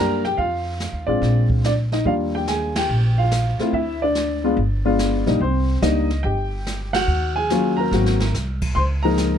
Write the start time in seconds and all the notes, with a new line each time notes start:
Already playing: F#2 G3 A#3 D4 G4 A#5
0.00 A#4
0.25 G4 G5, snare
0.37 F2 F4 F5, brush sweep, kick
0.80 snare, hi-hat pedal
0.93 D#2
1.07 A1 G#3 C4 D4 F4 D5
1.22 A#1, brush sweep, kick, snare
1.50 kick
1.64 D4 D5, snare, hi-hat pedal
1.92 D#4 D#5, snare
2.05 D#2 G3 A#3 D4 F4 F5, brush sweep, kick
2.35 G4 G5
2.47 G#4 G#5, snare, hi-hat pedal
2.75 G4 G5, snare, ride
2.89 A#1, brush sweep
3.18 F4 F5
3.31 snare, hi-hat pedal
3.59 A3 C4 E4 F4, muted upright bass stroke, snare
3.73 D2 E4 E5, brush sweep, kick
4.02 D4 D5
4.15 snare, hi-hat pedal
4.44 G#3 B3 D4 F4
4.57 G1, brush sweep, kick
4.85 G#3 B3 D4 F4
4.99 snare, hi-hat pedal
5.26 B1 G3 A#3 D4 D#4, snare
5.40 C2 C4 C5, brush sweep, kick
5.82 C#2 G3 A#3 D4 D#4 D#5, snare, hi-hat pedal
6.10 snare
6.23 G1 G4 G5, brush sweep, kick
6.66 snare, hi-hat pedal
6.93 F#4 F#5, snare, ride
7.07 D#2, brush sweep
7.36 G#4 G#5
7.50 F#3 A#3 C#4 F4, snare, hi-hat pedal
7.77 A#4 A#5
7.92 G#1 F#3 A#3 C4 F#4, snare
8.06 snare
8.20 snare
8.33 C2, snare, hi-hat pedal
8.62 kick, crash
8.75 C#2 C5 C6, brush sweep, kick
9.03 F3 G#3 A#3 D#4 A#4 A#5
9.17 snare, hi-hat pedal